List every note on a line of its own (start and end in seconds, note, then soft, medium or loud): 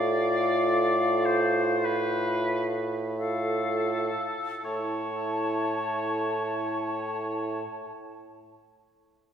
0.00 4.12 A2 soft
0.00 2.73 F4 medium
0.00 2.73 A4 medium
0.00 1.27 D5 medium
0.00 2.77 F5 soft
1.25 1.86 C5 medium
1.85 2.77 B4 medium
3.17 4.12 F4 soft
3.17 4.61 A4 soft
3.17 4.11 A4 soft
3.17 4.12 F5 soft
4.64 7.64 A2 soft
4.64 7.63 E4 soft
4.64 7.64 A4 soft
4.64 7.64 C#5 soft
4.64 7.65 A5 soft